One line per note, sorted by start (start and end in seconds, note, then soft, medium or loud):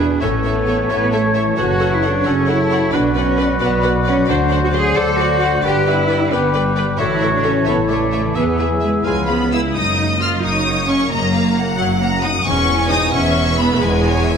0.00 0.15 E2 medium
0.00 0.24 E2 medium
0.00 0.21 B2 medium
0.00 0.21 E3 medium
0.00 0.23 B3 soft
0.00 0.21 D4 medium
0.00 0.21 G#4 medium
0.00 0.23 G#4 soft
0.00 0.19 B4 medium
0.00 0.21 B4 medium
0.00 0.24 B4 soft
0.00 0.17 G#5 medium
0.00 0.23 G#5 soft
0.00 0.23 B5 soft
0.10 0.24 B2 soft
0.20 0.83 A1 medium
0.20 1.60 A2 medium
0.20 1.59 A2 medium
0.20 1.56 E3 medium
0.20 0.45 C#4 medium
0.20 1.55 A4 medium
0.20 0.92 A4 medium
0.20 0.31 A4 medium
0.20 2.89 C#5 medium
0.20 0.29 C#5 medium
0.20 1.55 C#5 medium
0.20 0.28 E5 medium
0.20 2.90 A5 medium
0.32 1.45 E3 soft
0.43 0.91 B3 medium
0.43 1.34 C#4 soft
0.43 0.53 A4 soft
0.43 0.53 C#5 soft
0.43 0.55 E5 soft
0.55 1.22 E4 soft
0.66 2.02 A4 soft
0.66 0.75 A4 medium
0.66 0.76 C#5 soft
0.66 0.77 E5 medium
0.89 1.51 A1 medium
0.89 1.13 B3 loud
0.89 0.98 A4 medium
0.89 0.98 C#5 medium
0.89 1.58 C#5 medium
0.89 1.59 E5 medium
0.89 0.98 E5 medium
1.13 1.59 A3 medium
1.13 1.21 A4 medium
1.13 1.21 C#5 medium
1.13 1.21 E5 medium
1.23 1.59 E4 medium
1.35 1.79 C#4 soft
1.35 1.43 A4 medium
1.35 1.43 C#5 medium
1.35 1.43 E5 soft
1.46 1.60 E3 soft
1.57 2.18 F#1 medium
1.57 2.96 F#2 medium
1.57 2.26 C#3 medium
1.57 2.25 F#3 medium
1.57 1.91 F#4 medium
1.57 1.65 A4 medium
1.57 2.25 A4 medium
1.57 2.25 B4 medium
1.57 1.65 C#5 medium
1.57 2.25 C#5 medium
1.57 1.65 F#5 medium
1.69 2.80 C#3 soft
1.80 2.69 C#4 soft
1.80 1.88 A4 medium
1.80 1.88 C#5 medium
1.80 1.89 F#5 medium
1.91 2.03 E4 medium
1.91 2.57 F#4 medium
2.03 2.26 D4 medium
2.03 2.11 A4 medium
2.03 2.11 C#5 medium
2.03 2.11 F#5 medium
2.15 2.47 C#5 medium
2.25 2.86 F#1 medium
2.25 2.93 C#3 medium
2.25 2.92 F#3 medium
2.25 2.48 C#4 medium
2.25 2.92 A4 medium
2.25 2.34 A4 medium
2.25 2.93 A4 medium
2.25 2.33 C#5 medium
2.25 2.93 C#5 medium
2.25 3.60 F#5 medium
2.25 2.35 F#5 medium
2.47 2.93 E4 medium
2.47 2.55 A4 medium
2.47 2.55 C#5 medium
2.47 2.57 F#5 medium
2.59 3.26 F#4 medium
2.70 2.95 C#4 medium
2.70 2.78 A4 medium
2.70 2.78 C#5 medium
2.70 2.80 F#5 medium
2.81 2.95 C#3 soft
2.92 3.53 B1 medium
2.92 4.30 B2 medium
2.92 3.60 B2 medium
2.92 3.60 F#3 medium
2.92 3.16 D4 medium
2.92 4.80 F#4 medium
2.92 3.01 B4 medium
2.92 4.26 B4 medium
2.92 3.60 B4 medium
2.92 3.00 D5 medium
2.92 3.60 D5 medium
2.92 3.02 F#5 medium
2.92 4.03 F#5 medium
3.04 4.16 F#3 soft
3.15 3.60 C#4 medium
3.15 3.24 B4 medium
3.15 3.23 D5 medium
3.15 3.26 F#5 medium
3.27 3.94 F#4 medium
3.37 3.45 B4 medium
3.37 4.31 B4 medium
3.37 3.47 D5 medium
3.41 3.49 F#5 medium
3.50 3.83 D5 medium
3.60 4.21 B1 medium
3.60 4.28 B2 medium
3.60 4.26 F#3 medium
3.60 3.84 B3 medium
3.60 3.68 B4 medium
3.60 4.28 B4 medium
3.60 3.68 D5 medium
3.60 4.28 D5 medium
3.60 4.96 F#5 medium
3.60 3.72 F#5 medium
3.73 4.31 B5 medium
3.82 3.92 B4 medium
3.82 3.90 D5 medium
3.82 4.85 D5 medium
3.82 3.91 F#5 medium
3.95 4.62 F#4 medium
4.05 4.28 C#4 loud
4.05 4.51 D4 medium
4.05 4.15 B4 medium
4.05 4.13 D5 medium
4.05 4.15 F#5 medium
4.17 5.66 F#3 medium
4.27 4.89 D2 medium
4.27 6.83 D3 medium
4.27 5.66 D3 medium
4.27 5.59 F#3 medium
4.27 4.63 D4 medium
4.27 4.92 C5 medium
4.27 4.37 C5 medium
4.27 5.61 C5 medium
4.27 4.36 D5 medium
4.27 6.96 D5 medium
4.27 4.92 F#5 medium
4.27 4.38 F#5 medium
4.40 5.53 A3 medium
4.51 4.59 C5 medium
4.51 4.59 D5 medium
4.51 4.59 F#5 medium
4.63 4.68 F#4 medium
4.63 5.30 F#4 medium
4.72 4.96 G#4 loud
4.72 4.81 C5 medium
4.72 5.66 C5 medium
4.72 4.80 D5 medium
4.72 4.84 F#5 medium
4.86 5.19 D5 medium
4.95 5.56 D2 medium
4.95 5.19 A4 loud
4.95 5.65 C5 medium
4.95 5.04 C5 medium
4.95 5.03 D5 medium
4.95 5.40 D5 medium
4.95 5.63 F#5 medium
4.95 5.66 F#5 medium
4.99 5.07 F#5 medium
5.09 5.66 C6 medium
5.19 5.64 F#4 loud
5.19 5.27 C5 medium
5.19 5.27 D5 medium
5.19 5.29 F#5 medium
5.31 5.66 F#4 medium
5.40 5.87 D4 medium
5.40 5.50 C5 medium
5.40 5.48 D5 medium
5.40 5.51 F#5 medium
5.54 5.66 A3 medium
5.62 6.24 G1 medium
5.62 7.02 G2 medium
5.62 6.83 G3 medium
5.62 5.86 G4 loud
5.62 6.15 B4 medium
5.62 5.73 B4 medium
5.62 6.98 B4 medium
5.62 6.35 B4 medium
5.62 5.70 D5 medium
5.62 6.28 G5 medium
5.67 5.75 G5 medium
5.76 6.87 D3 medium
5.85 6.76 D4 medium
5.85 6.33 E4 loud
5.85 5.95 B4 medium
5.85 5.93 D5 medium
5.85 5.97 G5 medium
5.98 6.66 G4 soft
6.08 6.17 B4 medium
6.08 7.02 B4 medium
6.08 6.16 D5 medium
6.08 6.19 G5 medium
6.22 6.54 D5 medium
6.30 6.92 G1 medium
6.30 6.55 B3 medium
6.30 6.99 G4 medium
6.30 6.39 B4 medium
6.30 6.99 B4 medium
6.30 6.39 D5 medium
6.30 6.97 G5 medium
6.30 6.41 G5 medium
6.30 7.02 G5 medium
6.44 7.02 B5 medium
6.52 6.99 G3 medium
6.52 6.63 B4 medium
6.52 6.60 D5 medium
6.52 7.02 D5 medium
6.52 6.62 G5 medium
6.67 7.02 G4 medium
6.76 7.02 D4 medium
6.76 6.86 B4 medium
6.76 6.84 D5 medium
6.76 6.84 G5 medium
6.89 7.02 D3 medium
6.98 7.60 A1 medium
6.98 8.38 A2 medium
6.98 9.02 E3 medium
6.98 8.33 A3 medium
6.98 7.33 E4 medium
6.98 7.66 F#4 medium
6.98 8.18 A4 medium
6.98 7.08 A4 medium
6.98 7.06 C#5 medium
6.98 8.18 C#5 medium
6.98 7.90 C#5 medium
6.98 7.06 E5 medium
6.98 8.32 A5 medium
7.12 8.24 E3 soft
7.19 7.31 A4 medium
7.19 7.29 C#5 medium
7.19 7.27 E5 medium
7.23 8.39 C#3 soft
7.34 7.45 D4 medium
7.34 8.00 E4 medium
7.44 7.68 C#4 medium
7.44 7.53 A4 medium
7.44 8.38 A4 medium
7.44 7.52 C#5 medium
7.44 7.52 E5 medium
7.64 8.28 A1 medium
7.64 7.76 B3 medium
7.64 8.34 E4 medium
7.64 7.75 A4 medium
7.64 7.74 C#5 medium
7.64 7.72 E5 medium
7.64 8.91 E5 medium
7.79 8.38 A5 medium
7.88 8.35 A3 medium
7.88 7.97 A4 medium
7.88 7.99 C#5 medium
7.88 8.37 D5 medium
7.88 7.96 E5 medium
8.01 8.58 E4 medium
8.11 8.38 C#4 soft
8.11 8.22 A4 medium
8.11 8.21 C#5 medium
8.11 8.19 E5 medium
8.25 8.35 E3 soft
8.35 8.97 E2 medium
8.35 9.07 E3 medium
8.35 9.49 B3 medium
8.35 8.71 B3 medium
8.35 9.49 G#4 medium
8.35 9.04 G#4 medium
8.35 8.44 G#4 medium
8.35 9.05 B4 medium
8.35 8.44 B4 medium
8.35 8.43 E5 medium
8.35 9.06 E5 medium
8.35 9.04 G#5 medium
8.48 9.28 B3 soft
8.59 9.07 E4 soft
8.59 8.68 G#4 medium
8.59 8.67 B4 medium
8.59 8.67 E5 medium
8.70 8.76 F#3 medium
8.70 9.51 G#4 soft
8.81 9.04 G#3 medium
8.81 8.91 G#4 soft
8.81 8.90 B4 soft
8.81 8.89 E5 medium
8.93 9.07 E5 soft
9.03 9.67 C#2 medium
9.03 9.77 C#3 medium
9.03 9.52 F3 medium
9.03 9.73 G#3 medium
9.03 9.28 G#3 medium
9.03 9.39 F4 soft
9.03 9.14 G#4 medium
9.03 9.13 B4 soft
9.03 9.50 C#5 soft
9.03 9.12 F5 soft
9.03 9.52 F5 medium
9.03 9.26 G#5 medium
9.07 9.53 B5 medium
9.17 9.77 G#3 soft
9.26 9.52 B3 medium
9.26 9.77 B3 soft
9.26 9.37 G#4 soft
9.26 9.36 B4 soft
9.26 9.34 F5 medium
9.26 9.51 B5 medium
9.41 9.77 F4 soft
9.52 9.75 E4 medium
9.52 9.60 G#4 soft
9.52 9.77 G#4 soft
9.52 9.61 B4 soft
9.52 9.61 F5 soft
9.52 9.61 E6 medium
9.64 9.77 B4 soft
9.75 10.36 F#1 medium
9.75 12.43 F#2 medium
9.75 11.10 F#2 medium
9.75 10.36 F#2 medium
9.75 12.43 A#3 medium
9.75 10.21 D#4 medium
9.75 10.39 D#5 medium
9.75 10.20 D#6 medium
9.99 10.43 C#3 soft
10.20 11.32 A#3 soft
10.20 10.42 F4 medium
10.20 10.29 F6 medium
10.42 11.04 F#1 medium
10.42 11.03 F#2 medium
10.42 10.87 C#3 soft
10.42 10.88 D#4 medium
10.42 11.10 C#5 medium
10.42 10.88 D#6 medium
10.67 12.00 F#4 soft
10.87 11.54 C#3 soft
10.87 11.10 C#4 medium
10.87 11.11 C#6 medium
11.11 11.71 F#1 medium
11.11 12.49 F#2 medium
11.11 11.71 F#2 medium
11.11 11.78 A#3 medium
11.11 11.34 D#5 medium
11.11 11.78 A#5 medium
11.34 11.77 A#3 soft
11.34 11.56 F5 medium
11.56 12.22 C#3 soft
11.56 12.47 F#5 medium
11.77 12.39 F#1 medium
11.77 12.39 F#2 medium
11.77 12.00 F#3 medium
11.77 12.48 A#3 soft
11.77 11.86 F#5 medium
12.01 12.09 A#3 medium
12.01 12.49 F#4 medium
12.01 12.24 A#5 medium
12.23 12.48 C#3 medium
12.23 12.32 D#4 medium
12.23 12.46 D#6 medium
12.44 13.07 E1 medium
12.44 13.81 E2 medium
12.44 13.06 E2 medium
12.44 14.37 G#2 medium
12.44 14.37 B3 medium
12.44 12.91 C#4 medium
12.44 13.12 G#5 medium
12.44 12.91 C#6 loud
12.68 13.12 B2 medium
12.89 14.04 G#3 medium
12.89 13.14 D#4 medium
12.89 13.13 D#6 loud
13.13 13.74 E1 medium
13.13 13.75 E2 medium
13.13 13.59 B2 medium
13.13 13.58 C#4 medium
13.13 13.81 E5 medium
13.13 13.58 C#6 loud
13.37 14.37 G#4 medium
13.59 14.26 B2 medium
13.59 13.82 B3 medium
13.59 13.82 B5 loud
13.81 14.37 E1 medium
13.81 14.37 E2 medium
13.81 14.37 G#3 medium
13.81 13.89 B4 medium
13.81 14.37 G#5 loud
14.04 14.37 G#3 medium
14.04 14.26 C#5 medium
14.27 14.37 B2 medium
14.27 14.37 E5 medium